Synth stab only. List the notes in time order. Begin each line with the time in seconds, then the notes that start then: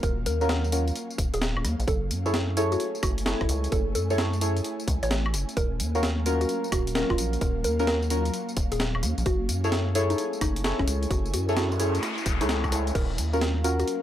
Already playing: C#4 F4 F#4 A#4
0.41 C#4 F4 F#4 A#4
0.72 C#4 F4 F#4 A#4
2.26 E4 G#4 A4 C#5
2.57 E4 G#4 A4 C#5
3.26 E4 G#4 A4 C#5
4.10 E4 G#4 A4 C#5
4.41 E4 G#4 A4 C#5
5.95 C#4 F4 F#4 A#4
6.26 C#4 F4 F#4 A#4
6.95 C#4 F4 F#4 A#4
7.79 C#4 F4 F#4 A#4
8.11 C#4 F4 F#4 A#4
9.64 E4 G#4 A4 C#5
9.95 E4 G#4 A4 C#5
10.64 E4 G#4 A4 C#5
11.49 E4 G#4 A4 C#5
11.80 E4 G#4 A4 C#5
12.41 E4 G#4 A4 C#5
12.72 E4 G#4 A4 C#5
13.33 C#4 F4 F#4 A#4
13.64 C#4 F4 F#4 A#4